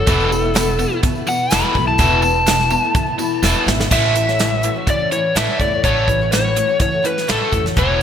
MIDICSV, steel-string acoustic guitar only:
0, 0, Header, 1, 2, 480
1, 0, Start_track
1, 0, Key_signature, 3, "major"
1, 0, Tempo, 480769
1, 74, Time_signature, 4, 2, 24, 8
1, 8013, End_track
2, 0, Start_track
2, 0, Title_t, "Steel-string acoustic guitar"
2, 0, Program_c, 0, 25
2, 68, Note_on_c, 0, 40, 80
2, 71, Note_on_c, 0, 47, 74
2, 75, Note_on_c, 0, 52, 90
2, 76, Note_on_c, 0, 57, 92
2, 84, Note_on_c, 0, 59, 89
2, 87, Note_on_c, 0, 64, 95
2, 409, Note_off_c, 0, 64, 0
2, 421, Note_on_c, 0, 64, 63
2, 423, Note_off_c, 0, 59, 0
2, 430, Note_off_c, 0, 40, 0
2, 432, Note_off_c, 0, 47, 0
2, 434, Note_off_c, 0, 52, 0
2, 434, Note_off_c, 0, 57, 0
2, 435, Note_on_c, 0, 59, 57
2, 447, Note_on_c, 0, 57, 58
2, 454, Note_on_c, 0, 52, 58
2, 536, Note_on_c, 0, 40, 77
2, 537, Note_off_c, 0, 52, 0
2, 540, Note_off_c, 0, 57, 0
2, 540, Note_on_c, 0, 47, 85
2, 546, Note_off_c, 0, 59, 0
2, 547, Note_off_c, 0, 64, 0
2, 549, Note_on_c, 0, 52, 81
2, 552, Note_on_c, 0, 57, 93
2, 558, Note_on_c, 0, 59, 99
2, 563, Note_on_c, 0, 64, 94
2, 772, Note_off_c, 0, 52, 0
2, 784, Note_off_c, 0, 40, 0
2, 784, Note_on_c, 0, 52, 60
2, 785, Note_off_c, 0, 57, 0
2, 786, Note_off_c, 0, 47, 0
2, 795, Note_off_c, 0, 59, 0
2, 797, Note_off_c, 0, 64, 0
2, 797, Note_on_c, 0, 57, 67
2, 805, Note_on_c, 0, 59, 71
2, 820, Note_on_c, 0, 64, 70
2, 889, Note_off_c, 0, 64, 0
2, 901, Note_on_c, 0, 64, 55
2, 907, Note_off_c, 0, 59, 0
2, 908, Note_off_c, 0, 52, 0
2, 914, Note_off_c, 0, 57, 0
2, 919, Note_on_c, 0, 59, 61
2, 928, Note_on_c, 0, 57, 51
2, 939, Note_on_c, 0, 52, 51
2, 1136, Note_off_c, 0, 64, 0
2, 1148, Note_on_c, 0, 64, 43
2, 1151, Note_off_c, 0, 59, 0
2, 1159, Note_off_c, 0, 57, 0
2, 1163, Note_on_c, 0, 59, 45
2, 1165, Note_off_c, 0, 52, 0
2, 1174, Note_on_c, 0, 57, 45
2, 1182, Note_on_c, 0, 52, 41
2, 1255, Note_off_c, 0, 52, 0
2, 1267, Note_on_c, 0, 52, 62
2, 1268, Note_off_c, 0, 57, 0
2, 1269, Note_off_c, 0, 64, 0
2, 1276, Note_off_c, 0, 59, 0
2, 1280, Note_on_c, 0, 57, 60
2, 1293, Note_on_c, 0, 59, 67
2, 1301, Note_on_c, 0, 64, 67
2, 1497, Note_on_c, 0, 40, 88
2, 1500, Note_off_c, 0, 52, 0
2, 1504, Note_off_c, 0, 57, 0
2, 1504, Note_on_c, 0, 47, 78
2, 1505, Note_off_c, 0, 59, 0
2, 1512, Note_off_c, 0, 64, 0
2, 1512, Note_on_c, 0, 52, 84
2, 1516, Note_on_c, 0, 57, 91
2, 1517, Note_on_c, 0, 59, 83
2, 1524, Note_on_c, 0, 64, 96
2, 1730, Note_off_c, 0, 52, 0
2, 1742, Note_on_c, 0, 52, 67
2, 1743, Note_off_c, 0, 40, 0
2, 1745, Note_off_c, 0, 57, 0
2, 1746, Note_off_c, 0, 47, 0
2, 1753, Note_off_c, 0, 59, 0
2, 1756, Note_off_c, 0, 64, 0
2, 1757, Note_on_c, 0, 57, 66
2, 1765, Note_on_c, 0, 59, 71
2, 1780, Note_on_c, 0, 64, 68
2, 1842, Note_off_c, 0, 64, 0
2, 1854, Note_on_c, 0, 64, 54
2, 1861, Note_off_c, 0, 59, 0
2, 1865, Note_off_c, 0, 52, 0
2, 1866, Note_off_c, 0, 57, 0
2, 1873, Note_on_c, 0, 59, 47
2, 1878, Note_on_c, 0, 57, 43
2, 1891, Note_on_c, 0, 52, 44
2, 1981, Note_off_c, 0, 64, 0
2, 1987, Note_off_c, 0, 52, 0
2, 1989, Note_on_c, 0, 40, 81
2, 1990, Note_off_c, 0, 57, 0
2, 1991, Note_off_c, 0, 59, 0
2, 1996, Note_on_c, 0, 47, 84
2, 1999, Note_on_c, 0, 52, 85
2, 2002, Note_on_c, 0, 57, 92
2, 2006, Note_on_c, 0, 59, 95
2, 2014, Note_on_c, 0, 64, 82
2, 2329, Note_off_c, 0, 64, 0
2, 2338, Note_off_c, 0, 59, 0
2, 2341, Note_on_c, 0, 64, 57
2, 2348, Note_off_c, 0, 40, 0
2, 2350, Note_off_c, 0, 57, 0
2, 2350, Note_on_c, 0, 59, 51
2, 2351, Note_off_c, 0, 47, 0
2, 2352, Note_off_c, 0, 52, 0
2, 2362, Note_on_c, 0, 57, 56
2, 2376, Note_on_c, 0, 52, 46
2, 2455, Note_on_c, 0, 40, 79
2, 2457, Note_off_c, 0, 52, 0
2, 2462, Note_on_c, 0, 47, 79
2, 2464, Note_off_c, 0, 57, 0
2, 2464, Note_off_c, 0, 64, 0
2, 2468, Note_off_c, 0, 59, 0
2, 2469, Note_on_c, 0, 52, 81
2, 2476, Note_on_c, 0, 57, 76
2, 2479, Note_on_c, 0, 59, 75
2, 2481, Note_on_c, 0, 64, 86
2, 2676, Note_off_c, 0, 52, 0
2, 2688, Note_on_c, 0, 52, 56
2, 2694, Note_off_c, 0, 57, 0
2, 2700, Note_off_c, 0, 40, 0
2, 2704, Note_off_c, 0, 47, 0
2, 2704, Note_off_c, 0, 59, 0
2, 2706, Note_on_c, 0, 57, 58
2, 2713, Note_off_c, 0, 64, 0
2, 2716, Note_on_c, 0, 59, 63
2, 2726, Note_on_c, 0, 64, 65
2, 2809, Note_off_c, 0, 64, 0
2, 2817, Note_off_c, 0, 52, 0
2, 2821, Note_on_c, 0, 64, 58
2, 2824, Note_off_c, 0, 59, 0
2, 2826, Note_off_c, 0, 57, 0
2, 2836, Note_on_c, 0, 59, 55
2, 2842, Note_on_c, 0, 57, 55
2, 2854, Note_on_c, 0, 52, 51
2, 3045, Note_off_c, 0, 64, 0
2, 3052, Note_off_c, 0, 59, 0
2, 3057, Note_on_c, 0, 64, 55
2, 3064, Note_on_c, 0, 59, 51
2, 3068, Note_off_c, 0, 57, 0
2, 3079, Note_off_c, 0, 52, 0
2, 3080, Note_on_c, 0, 57, 47
2, 3090, Note_on_c, 0, 52, 43
2, 3168, Note_off_c, 0, 52, 0
2, 3180, Note_on_c, 0, 52, 76
2, 3181, Note_off_c, 0, 57, 0
2, 3181, Note_off_c, 0, 64, 0
2, 3185, Note_off_c, 0, 59, 0
2, 3192, Note_on_c, 0, 57, 64
2, 3202, Note_on_c, 0, 59, 67
2, 3211, Note_on_c, 0, 64, 75
2, 3420, Note_off_c, 0, 52, 0
2, 3423, Note_on_c, 0, 40, 94
2, 3429, Note_off_c, 0, 57, 0
2, 3429, Note_off_c, 0, 59, 0
2, 3432, Note_on_c, 0, 47, 88
2, 3432, Note_on_c, 0, 52, 87
2, 3438, Note_off_c, 0, 64, 0
2, 3440, Note_on_c, 0, 57, 98
2, 3441, Note_on_c, 0, 59, 92
2, 3451, Note_on_c, 0, 64, 110
2, 3650, Note_off_c, 0, 52, 0
2, 3660, Note_off_c, 0, 57, 0
2, 3662, Note_on_c, 0, 52, 78
2, 3664, Note_off_c, 0, 40, 0
2, 3668, Note_off_c, 0, 47, 0
2, 3672, Note_on_c, 0, 57, 67
2, 3673, Note_off_c, 0, 59, 0
2, 3678, Note_off_c, 0, 64, 0
2, 3683, Note_on_c, 0, 59, 76
2, 3699, Note_on_c, 0, 64, 80
2, 3758, Note_off_c, 0, 64, 0
2, 3770, Note_on_c, 0, 64, 61
2, 3772, Note_off_c, 0, 59, 0
2, 3780, Note_off_c, 0, 57, 0
2, 3783, Note_off_c, 0, 52, 0
2, 3784, Note_on_c, 0, 59, 47
2, 3792, Note_on_c, 0, 57, 48
2, 3803, Note_on_c, 0, 52, 45
2, 3889, Note_off_c, 0, 52, 0
2, 3893, Note_off_c, 0, 57, 0
2, 3894, Note_on_c, 0, 45, 75
2, 3897, Note_off_c, 0, 64, 0
2, 3901, Note_on_c, 0, 52, 91
2, 3904, Note_off_c, 0, 59, 0
2, 3905, Note_on_c, 0, 57, 88
2, 3912, Note_on_c, 0, 61, 90
2, 3919, Note_on_c, 0, 66, 92
2, 4235, Note_off_c, 0, 66, 0
2, 4247, Note_on_c, 0, 66, 54
2, 4255, Note_off_c, 0, 61, 0
2, 4259, Note_off_c, 0, 45, 0
2, 4263, Note_off_c, 0, 52, 0
2, 4265, Note_off_c, 0, 57, 0
2, 4267, Note_on_c, 0, 61, 53
2, 4280, Note_on_c, 0, 57, 39
2, 4376, Note_off_c, 0, 66, 0
2, 4380, Note_off_c, 0, 57, 0
2, 4380, Note_on_c, 0, 45, 63
2, 4386, Note_off_c, 0, 61, 0
2, 4390, Note_on_c, 0, 52, 69
2, 4392, Note_on_c, 0, 57, 75
2, 4398, Note_on_c, 0, 61, 72
2, 4406, Note_on_c, 0, 66, 69
2, 4598, Note_off_c, 0, 52, 0
2, 4610, Note_on_c, 0, 52, 60
2, 4616, Note_off_c, 0, 57, 0
2, 4622, Note_off_c, 0, 45, 0
2, 4628, Note_off_c, 0, 61, 0
2, 4628, Note_on_c, 0, 57, 64
2, 4635, Note_off_c, 0, 66, 0
2, 4640, Note_on_c, 0, 61, 67
2, 4652, Note_on_c, 0, 66, 71
2, 4719, Note_off_c, 0, 66, 0
2, 4731, Note_on_c, 0, 66, 48
2, 4737, Note_off_c, 0, 52, 0
2, 4738, Note_off_c, 0, 61, 0
2, 4747, Note_off_c, 0, 57, 0
2, 4750, Note_on_c, 0, 61, 50
2, 4765, Note_on_c, 0, 57, 44
2, 4955, Note_off_c, 0, 66, 0
2, 4967, Note_on_c, 0, 66, 46
2, 4975, Note_off_c, 0, 61, 0
2, 4987, Note_on_c, 0, 61, 44
2, 4992, Note_off_c, 0, 57, 0
2, 5004, Note_on_c, 0, 57, 42
2, 5096, Note_off_c, 0, 57, 0
2, 5096, Note_off_c, 0, 66, 0
2, 5096, Note_on_c, 0, 52, 49
2, 5106, Note_off_c, 0, 61, 0
2, 5108, Note_on_c, 0, 57, 53
2, 5125, Note_on_c, 0, 61, 53
2, 5135, Note_on_c, 0, 66, 64
2, 5338, Note_off_c, 0, 52, 0
2, 5340, Note_off_c, 0, 57, 0
2, 5342, Note_on_c, 0, 45, 77
2, 5348, Note_off_c, 0, 61, 0
2, 5350, Note_on_c, 0, 52, 84
2, 5352, Note_on_c, 0, 57, 77
2, 5355, Note_off_c, 0, 66, 0
2, 5360, Note_on_c, 0, 61, 95
2, 5367, Note_on_c, 0, 66, 82
2, 5566, Note_off_c, 0, 52, 0
2, 5578, Note_on_c, 0, 52, 52
2, 5579, Note_off_c, 0, 57, 0
2, 5584, Note_off_c, 0, 45, 0
2, 5591, Note_on_c, 0, 57, 65
2, 5593, Note_off_c, 0, 61, 0
2, 5597, Note_off_c, 0, 66, 0
2, 5604, Note_on_c, 0, 61, 60
2, 5612, Note_on_c, 0, 66, 66
2, 5693, Note_off_c, 0, 66, 0
2, 5702, Note_off_c, 0, 52, 0
2, 5705, Note_on_c, 0, 66, 53
2, 5709, Note_off_c, 0, 57, 0
2, 5712, Note_off_c, 0, 61, 0
2, 5724, Note_on_c, 0, 61, 45
2, 5739, Note_on_c, 0, 57, 42
2, 5823, Note_on_c, 0, 45, 76
2, 5826, Note_off_c, 0, 66, 0
2, 5827, Note_off_c, 0, 57, 0
2, 5832, Note_off_c, 0, 61, 0
2, 5835, Note_on_c, 0, 52, 89
2, 5839, Note_on_c, 0, 57, 86
2, 5844, Note_on_c, 0, 61, 99
2, 5850, Note_on_c, 0, 66, 85
2, 6170, Note_off_c, 0, 66, 0
2, 6181, Note_on_c, 0, 66, 56
2, 6186, Note_off_c, 0, 45, 0
2, 6191, Note_off_c, 0, 61, 0
2, 6192, Note_off_c, 0, 52, 0
2, 6194, Note_off_c, 0, 57, 0
2, 6203, Note_on_c, 0, 61, 48
2, 6217, Note_on_c, 0, 57, 49
2, 6304, Note_on_c, 0, 45, 72
2, 6305, Note_off_c, 0, 66, 0
2, 6306, Note_off_c, 0, 57, 0
2, 6309, Note_on_c, 0, 52, 70
2, 6312, Note_off_c, 0, 61, 0
2, 6318, Note_on_c, 0, 57, 80
2, 6324, Note_on_c, 0, 61, 78
2, 6327, Note_on_c, 0, 66, 72
2, 6529, Note_off_c, 0, 52, 0
2, 6541, Note_on_c, 0, 52, 56
2, 6546, Note_off_c, 0, 57, 0
2, 6547, Note_off_c, 0, 45, 0
2, 6553, Note_off_c, 0, 61, 0
2, 6558, Note_off_c, 0, 66, 0
2, 6558, Note_on_c, 0, 57, 60
2, 6565, Note_on_c, 0, 61, 63
2, 6575, Note_on_c, 0, 66, 65
2, 6649, Note_off_c, 0, 66, 0
2, 6661, Note_on_c, 0, 66, 53
2, 6665, Note_off_c, 0, 52, 0
2, 6669, Note_off_c, 0, 61, 0
2, 6674, Note_off_c, 0, 57, 0
2, 6681, Note_on_c, 0, 61, 52
2, 6697, Note_on_c, 0, 57, 36
2, 6883, Note_off_c, 0, 66, 0
2, 6895, Note_on_c, 0, 66, 46
2, 6899, Note_off_c, 0, 61, 0
2, 6911, Note_on_c, 0, 61, 44
2, 6916, Note_off_c, 0, 57, 0
2, 6928, Note_on_c, 0, 57, 37
2, 7015, Note_on_c, 0, 52, 50
2, 7016, Note_off_c, 0, 57, 0
2, 7023, Note_off_c, 0, 66, 0
2, 7027, Note_off_c, 0, 61, 0
2, 7028, Note_on_c, 0, 57, 57
2, 7039, Note_on_c, 0, 61, 64
2, 7054, Note_on_c, 0, 66, 62
2, 7251, Note_off_c, 0, 52, 0
2, 7259, Note_on_c, 0, 45, 76
2, 7260, Note_off_c, 0, 57, 0
2, 7263, Note_on_c, 0, 52, 71
2, 7268, Note_off_c, 0, 61, 0
2, 7272, Note_on_c, 0, 57, 72
2, 7273, Note_off_c, 0, 66, 0
2, 7280, Note_on_c, 0, 61, 74
2, 7285, Note_on_c, 0, 66, 82
2, 7492, Note_off_c, 0, 52, 0
2, 7504, Note_on_c, 0, 52, 62
2, 7506, Note_off_c, 0, 45, 0
2, 7512, Note_off_c, 0, 57, 0
2, 7516, Note_off_c, 0, 61, 0
2, 7519, Note_off_c, 0, 66, 0
2, 7525, Note_on_c, 0, 57, 63
2, 7533, Note_on_c, 0, 61, 64
2, 7543, Note_on_c, 0, 66, 68
2, 7613, Note_off_c, 0, 66, 0
2, 7625, Note_on_c, 0, 66, 44
2, 7628, Note_off_c, 0, 52, 0
2, 7634, Note_off_c, 0, 61, 0
2, 7639, Note_off_c, 0, 57, 0
2, 7646, Note_on_c, 0, 61, 44
2, 7663, Note_on_c, 0, 57, 41
2, 7745, Note_on_c, 0, 40, 83
2, 7749, Note_off_c, 0, 66, 0
2, 7750, Note_off_c, 0, 57, 0
2, 7754, Note_on_c, 0, 47, 72
2, 7758, Note_on_c, 0, 52, 83
2, 7760, Note_off_c, 0, 61, 0
2, 7762, Note_on_c, 0, 57, 83
2, 7765, Note_on_c, 0, 59, 85
2, 7774, Note_on_c, 0, 64, 95
2, 8013, Note_off_c, 0, 40, 0
2, 8013, Note_off_c, 0, 47, 0
2, 8013, Note_off_c, 0, 52, 0
2, 8013, Note_off_c, 0, 57, 0
2, 8013, Note_off_c, 0, 59, 0
2, 8013, Note_off_c, 0, 64, 0
2, 8013, End_track
0, 0, End_of_file